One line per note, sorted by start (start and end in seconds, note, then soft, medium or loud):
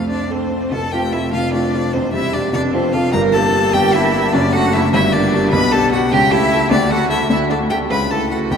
0.00 0.68 F2 medium
0.00 0.22 A3 soft
0.00 0.09 C4 medium
0.09 0.43 C4 medium
0.09 0.29 D4 medium
0.09 0.33 D5 medium
0.30 0.73 C4 medium
0.30 0.64 A4 medium
0.30 0.73 C5 medium
0.51 0.72 C4 soft
0.72 0.92 F1 medium
0.72 0.92 F2 medium
0.72 0.92 A4 medium
0.72 0.93 A5 medium
0.91 1.11 A3 medium
0.91 1.11 C4 soft
0.91 1.11 F4 medium
0.91 1.01 G4 medium
0.91 1.14 G5 loud
1.12 1.31 A3 soft
1.12 1.31 C4 soft
1.12 1.21 E4 medium
1.12 1.31 F4 soft
1.12 1.33 E5 medium
1.33 1.53 F1 medium
1.33 1.53 F2 medium
1.33 1.54 F4 medium
1.33 1.53 F5 loud
1.53 1.72 A3 medium
1.53 1.72 C4 soft
1.53 1.96 D4 medium
1.53 1.72 F4 medium
1.53 1.95 D5 medium
1.74 1.92 A3 soft
1.74 1.92 C4 soft
1.74 1.92 F4 soft
1.93 2.13 E1 medium
1.93 2.13 E2 medium
1.93 2.13 C4 medium
1.93 2.12 C5 medium
2.13 2.31 G3 medium
2.13 2.32 C4 medium
2.13 2.35 E4 medium
2.13 2.32 G4 medium
2.13 2.35 E5 loud
2.33 2.51 G3 soft
2.33 2.51 C4 medium
2.33 2.53 D4 medium
2.33 2.52 G4 medium
2.33 2.53 D5 loud
2.53 2.73 F1 medium
2.53 2.73 F2 medium
2.53 2.75 D4 loud
2.53 2.61 D5 loud
2.73 2.92 F3 medium
2.73 2.95 C4 medium
2.73 2.92 F4 medium
2.73 2.92 A4 medium
2.73 2.94 C5 medium
2.92 3.12 F3 medium
2.92 3.14 F4 medium
2.92 3.12 F4 soft
2.92 3.12 A4 medium
2.92 3.12 F5 loud
3.13 3.33 G1 medium
3.13 3.33 G2 medium
3.13 3.35 A#4 loud
3.13 3.21 A#5 loud
3.32 3.52 A#3 medium
3.32 3.52 D4 medium
3.32 3.52 G4 medium
3.32 3.75 A4 medium
3.32 3.75 A5 loud
3.54 3.72 A#3 soft
3.54 3.72 D4 medium
3.54 3.72 G4 medium
3.73 3.93 G1 medium
3.73 3.93 G2 medium
3.73 3.96 G4 loud
3.73 3.95 G5 loud
3.93 4.12 A#3 medium
3.93 4.12 D4 medium
3.93 4.33 E4 loud
3.93 4.12 G4 medium
3.93 4.34 E5 loud
4.14 4.32 A#3 medium
4.14 4.32 D4 medium
4.14 4.32 G4 medium
4.32 4.53 F#1 medium
4.32 4.53 F#2 medium
4.32 4.41 D4 medium
4.32 4.54 D5 loud
4.52 4.71 A3 medium
4.52 4.71 D4 medium
4.52 4.73 F#4 loud
4.52 4.72 A4 medium
4.52 4.75 F#5 loud
4.73 4.91 A3 medium
4.73 4.92 D4 medium
4.73 4.82 E4 loud
4.73 4.92 A4 medium
4.73 4.92 E5 loud
4.93 5.12 G1 medium
4.93 5.12 G2 medium
4.93 5.02 E4 loud
4.93 5.14 E5 loud
5.13 5.31 A#3 medium
5.13 5.54 D4 loud
5.13 5.31 D4 medium
5.13 5.31 G4 medium
5.13 5.51 D5 loud
5.33 5.51 A#3 medium
5.33 5.51 D4 medium
5.33 5.51 G4 medium
5.52 5.72 B1 loud
5.52 5.72 B2 medium
5.52 5.73 B4 loud
5.52 5.73 B5 loud
5.72 5.90 B3 medium
5.72 5.90 D4 medium
5.72 5.91 G4 medium
5.72 5.91 A4 medium
5.72 5.91 A5 loud
5.92 6.10 B3 medium
5.92 6.10 D4 medium
5.92 6.00 F#4 medium
5.92 6.11 G4 medium
5.92 6.13 F#5 loud
6.11 6.31 C#2 medium
6.11 6.31 C#3 medium
6.11 6.33 G4 loud
6.11 6.33 G5 loud
6.31 6.49 A3 medium
6.31 6.72 E4 loud
6.31 6.49 G4 medium
6.31 6.50 A4 medium
6.31 6.70 E5 loud
6.51 6.69 A3 medium
6.51 6.69 G4 medium
6.51 6.69 A4 medium
6.70 6.90 D2 medium
6.70 6.90 D3 medium
6.70 6.90 D4 loud
6.70 6.93 D5 loud
6.90 7.08 A3 medium
6.90 7.09 F#4 medium
6.90 7.09 A4 medium
6.90 7.09 F#5 loud
7.10 7.28 A3 medium
7.10 7.18 E4 medium
7.10 7.28 F#4 medium
7.10 7.28 A4 medium
7.10 7.29 E5 loud
7.30 7.49 D2 medium
7.30 7.49 D3 medium
7.30 7.48 E4 loud
7.30 7.38 E5 loud
7.49 7.68 A3 medium
7.49 7.57 D4 medium
7.49 7.68 F#4 medium
7.49 7.69 A4 medium
7.49 7.58 D5 medium
7.70 7.88 A3 medium
7.70 7.88 F#4 medium
7.70 7.78 G4 medium
7.70 7.89 A4 medium
7.70 7.78 G5 loud
7.90 8.10 C#2 medium
7.90 8.10 C#3 medium
7.90 7.98 B4 loud
7.90 8.13 B5 loud
8.11 8.29 A3 medium
8.11 8.29 E4 medium
8.11 8.31 A4 medium
8.11 8.30 A4 medium
8.11 8.30 A5 medium
8.31 8.49 A3 soft
8.31 8.50 E4 soft
8.31 8.52 F#4 medium
8.31 8.50 A4 medium
8.31 8.39 F#5 medium
8.51 8.57 B1 medium
8.51 8.57 B2 medium
8.51 8.57 G4 medium
8.51 8.57 G5 medium